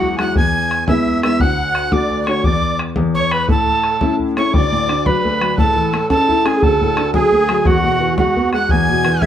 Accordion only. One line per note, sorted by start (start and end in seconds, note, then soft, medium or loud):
0.00 0.15 F#4 medium
0.16 0.36 F#5 medium
0.16 0.19 G#5 medium
0.37 0.90 G#5 medium
0.89 1.22 E5 medium
1.23 1.41 E5 medium
1.41 1.94 F#5 loud
1.94 2.29 D5 medium
2.28 2.43 C#5 medium
2.45 2.77 D5 medium
3.15 3.32 C#5 loud
3.33 3.50 B4 medium
3.49 4.15 A4 medium
4.37 4.53 C#5 medium
4.55 5.08 D5 medium
5.06 5.51 B4 medium
5.52 5.58 B4 medium
5.58 6.08 A4 medium
6.10 6.42 A4 medium
6.44 6.62 G#4 medium
6.63 7.11 A4 medium
7.13 7.67 G#4 loud
7.65 8.16 F#4 medium
8.18 8.50 F#4 medium
8.53 8.71 F#5 medium
8.69 9.23 G#5 medium
9.22 9.26 E5 medium